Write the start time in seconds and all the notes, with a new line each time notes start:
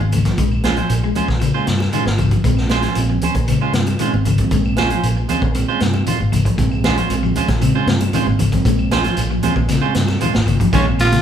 0.00 G#1, muted clean electric guitar stroke, high conga
0.12 C#3, muted clean electric guitar stroke, closed hi-hat, high conga, low conga, claves, shekere
0.25 F3, muted clean electric guitar stroke, kick, snare, closed hi-hat, shekere
0.38 A#1 G#3, kick, closed hi-hat, shekere
0.52 claves, shekere
0.63 G#3 C#4 F4 C5, snare, closed hi-hat, high conga, low conga, shekere
0.76 F3 C#4 C5, closed hi-hat, shekere
0.89 A#1, closed hi-hat, claves, shekere
1.03 G#3, muted clean electric guitar stroke, shekere
1.15 G#3 C#4 F4 C5, closed hi-hat, high conga, low conga, shekere
1.28 A#1, muted clean electric guitar stroke, kick, snare, high conga, shekere
1.40 C#3, muted clean electric guitar stroke, closed hi-hat, high conga, claves, shekere
1.54 G#3 C#4 F4 C5, shekere
1.67 G2 C3, muted clean electric guitar stroke, snare, closed hi-hat, shekere
1.79 muted clean electric guitar stroke, snare, high conga, claves, shekere
1.93 D#3 G#3 C#4 F4 C5, closed hi-hat, shekere
2.05 G#1, muted clean electric guitar stroke, snare, high conga, shekere
2.18 C#3, muted clean electric guitar stroke, kick, closed hi-hat, high conga, low conga, claves, shekere
2.31 F3, muted clean electric guitar stroke, kick, closed hi-hat, shekere
2.44 A#1 C#3 G#3 C4, kick, closed hi-hat, shekere
2.57 snare, claves, shekere
2.69 G#3 C#4 F4 C5, snare, closed hi-hat, high conga, shekere
2.82 F3 C#4 F4 C5, snare, closed hi-hat, shekere
2.95 A#1 C#3 G#3 C4, closed hi-hat, claves, shekere
3.10 F3, muted clean electric guitar stroke, shekere
3.21 C#4 C5, muted clean electric guitar stroke, closed hi-hat, high conga, low conga, shekere
3.34 A#1, muted clean electric guitar stroke, kick, closed hi-hat, high conga, shekere
3.48 C#3 G#3 C#4, muted clean electric guitar stroke, closed hi-hat, claves, shekere
3.61 G#3 C#4 F4 C5, shekere
3.73 G2 C3 C#3 G#3 C4, muted clean electric guitar stroke, snare, closed hi-hat, shekere
3.86 muted clean electric guitar stroke, closed hi-hat, high conga, claves, shekere
3.99 C#3 D#3 G#3 C4 C#4 F4 C5, closed hi-hat, shekere
4.12 G#1, muted clean electric guitar stroke, high conga, shekere
4.25 C#3, muted clean electric guitar stroke, closed hi-hat, high conga, low conga, claves, shekere
4.38 C#3 F3 G#3 C4, muted clean electric guitar stroke, kick, closed hi-hat, shekere
4.51 A#1 G#3, kick, closed hi-hat, shekere
4.64 claves, shekere
4.76 G#3 C#4 F4 C5, snare, closed hi-hat, high conga, low conga, shekere
4.90 F3 C#4 F4 C5, closed hi-hat, shekere
5.03 A#1, closed hi-hat, claves, shekere
5.17 muted clean electric guitar stroke, shekere
5.29 C#3 G#3 C4 C#4 F4 C5, closed hi-hat, high conga, low conga, shekere
5.42 A#1, muted clean electric guitar stroke, kick, high conga, shekere
5.54 C#3 G#3 C4, muted clean electric guitar stroke, closed hi-hat, claves, shekere
5.68 G#3 C#4 F4 C5, shekere
5.80 G2 C3, muted clean electric guitar stroke, snare, closed hi-hat, shekere
5.94 muted clean electric guitar stroke, high conga, claves, shekere
6.06 D#3 F4 C5, closed hi-hat, low conga, shekere
6.20 G#1, muted clean electric guitar stroke, high conga, shekere
6.32 C#3, muted clean electric guitar stroke, closed hi-hat, high conga, low conga, claves, shekere
6.45 F3, muted clean electric guitar stroke, kick, closed hi-hat, shekere
6.58 A#1 C#3 G#3 C4, muted clean electric guitar stroke, kick, closed hi-hat, shekere
6.72 claves, shekere
6.84 G#3 C#4 F4 C5, snare, closed hi-hat, high conga, low conga, shekere
6.97 F3 C#4 F4 C5, closed hi-hat, shekere
7.09 A#1 C#3 G#3 C4, closed hi-hat, claves, shekere
7.23 F3, muted clean electric guitar stroke, shekere
7.35 G#3 C#4 F4 C5, closed hi-hat, high conga, low conga, shekere
7.48 A#1, muted clean electric guitar stroke, kick, snare, closed hi-hat, high conga, shekere
7.61 C#3 G#3 C4, muted clean electric guitar stroke, closed hi-hat, high conga, claves, shekere
7.75 G#3 C#4 F4 C5, shekere
7.86 G2 C3 C#3 G#3 C4, muted clean electric guitar stroke, snare, closed hi-hat, shekere
8.00 muted clean electric guitar stroke, closed hi-hat, high conga, claves, shekere
8.12 C#3 D#3 G#3 C4 C#4 F4 C5, closed hi-hat, low conga, shekere
8.26 G#1, muted clean electric guitar stroke, high conga, shekere
8.39 C#3, muted clean electric guitar stroke, closed hi-hat, high conga, low conga, claves, shekere
8.52 C#3 F3 G#3 C4, muted clean electric guitar stroke, kick, closed hi-hat, shekere
8.65 A#1 G#3, kick, closed hi-hat, shekere
8.79 claves, shekere
8.91 G#3 C#4 F4 C5, snare, closed hi-hat, high conga, low conga, shekere
9.04 F3 C#4 F4 C5, closed hi-hat, shekere
9.17 A#1, closed hi-hat, claves, shekere
9.30 F3, muted clean electric guitar stroke, shekere
9.42 C#3 G#3 C4 C#4 F4 C5, closed hi-hat, high conga, low conga, shekere
9.56 A#1, muted clean electric guitar stroke, kick, high conga, shekere
9.68 C#3 G#3 C4, muted clean electric guitar stroke, snare, closed hi-hat, high conga, claves, shekere
9.82 G#3 C#4 F4 C5, shekere
9.94 G2 C3, muted clean electric guitar stroke, snare, closed hi-hat, shekere
10.08 muted clean electric guitar stroke, snare, high conga, claves, shekere
10.21 D#3 G#3 F4 C5, muted clean electric guitar stroke, closed hi-hat, low conga, shekere
10.34 G#1, muted clean electric guitar stroke, snare, high conga, shekere
10.46 C#3, muted clean electric guitar stroke, kick, closed hi-hat, claves, shekere
10.60 F3, muted clean electric guitar stroke, kick, closed hi-hat, low conga, shekere
10.73 A#1 D#3 G#3 C#4 F4 C5, kick, snare, closed hi-hat, low conga, shekere
10.85 C#3 G#3 C4, muted clean electric guitar stroke, claves
10.98 F4, muted clean electric guitar stroke, snare, closed hi-hat, shekere
11.12 C#3, snare, closed hi-hat, high conga, shekere